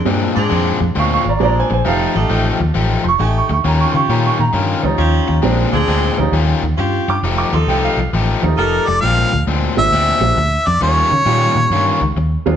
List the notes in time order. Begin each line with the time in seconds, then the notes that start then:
0.05 G2 A#2 G#3 A#3 C4 D4
0.35 G#2 C4 D4 G#4, muted overdriven electric guitar stroke
0.49 F2 A#2 G#3 C4 D4
0.80 F2, muted overdriven electric guitar stroke
0.95 D2 A#2 G#3 C4 D4 F5 C6
0.99 C#6
1.14 F5 C#6
1.26 G#1 D5 A#5, muted overdriven electric guitar stroke
1.39 A#1 G#3 A#3 C4 D4 F4 G#4 D5, muted overdriven electric guitar stroke
1.45 A#5
1.59 C5 G#5
1.70 A#1 C5 G#5, muted overdriven electric guitar stroke
1.85 F1 F3 G3 A3 D#4 G4 A4 F5
2.14 A1 A3 D#4 G4, muted overdriven electric guitar stroke
2.29 A1 F3 A3 D#4 G4
2.60 D#2, muted overdriven electric guitar stroke
2.74 A1 F3 A3 D#4 G4
3.04 F1 C6, muted overdriven electric guitar stroke
3.08 C#6
3.19 A1 A3 D#4 G4 G#5, muted overdriven electric guitar stroke
3.38 C#6
3.49 D2 C#6, muted overdriven electric guitar stroke
3.64 D#2 D#3 C#4 F4 G4 A#5
3.80 C#6
3.92 C#3 C#4 F4 G4 C6, muted overdriven electric guitar stroke
3.96 C#6
4.09 A#2 D#3 C#4 F4 G4 A#5
4.26 C#6
4.39 A#2 A#5, muted overdriven electric guitar stroke
4.53 G2 D#3 C#4 F4 G4
4.83 C#2 F3 G3 C#4 D#4, muted overdriven electric guitar stroke
4.98 D#2 C#4 F4 G4, muted overdriven electric guitar stroke
5.28 D#2, muted overdriven electric guitar stroke
5.42 A#1 A#2 G#3 A#3 C4 D4
5.72 D2 C4 D4 G#4, muted overdriven electric guitar stroke
5.88 D2 A#2 G#3 C4 D4
6.18 D2 F3 G3 C#4 D#4, muted overdriven electric guitar stroke
6.32 D#2 D#3 C#4 F4 G4
6.63 D#2, muted overdriven electric guitar stroke
6.78 G2 C#4 F4 G4, muted overdriven electric guitar stroke
7.08 G2 D6, muted overdriven electric guitar stroke
7.23 F1 F3 A3 D#4 G4
7.38 D6
7.53 D#2 D#4 G4 A4 C6, muted overdriven electric guitar stroke
7.67 C2 F3 A3 D#4 G4 G5
7.84 F5
7.97 C2, muted overdriven electric guitar stroke
8.13 A1 F3 A3 D#4 G4
8.43 D#2 F3 G3 A3 D#4, muted overdriven electric guitar stroke
8.57 F1 D#4 G4 A4 A#4, muted overdriven electric guitar stroke
8.87 F1 D5, muted overdriven electric guitar stroke
9.01 A#1 A#2 G#3 C4 D4 F5
9.32 D2, muted overdriven electric guitar stroke
9.47 D2 A#2 G#3 C4 D4
9.77 G#1 G#3 A#3 C4 D4 F4 E5, muted overdriven electric guitar stroke
9.91 D2 A#2 G#3 C4 D4
10.20 A#1 G#3 A#3 C4 D4 F4, muted overdriven electric guitar stroke
10.36 D2, muted overdriven electric guitar stroke
10.67 F2 D5, muted overdriven electric guitar stroke
10.81 D#2 D#3 G3 C#4 F4 C#5
11.11 C#3, muted overdriven electric guitar stroke
11.26 A#2 D#3 G3 A#3 C#4 D#4 F4
11.55 A#2, muted overdriven electric guitar stroke
11.70 G2 D#3 G3 C#4 F4
12.01 C#2, muted overdriven electric guitar stroke
12.16 D#2, muted overdriven electric guitar stroke
12.46 D#2 G#3 A#3 C4 D4 F4, muted overdriven electric guitar stroke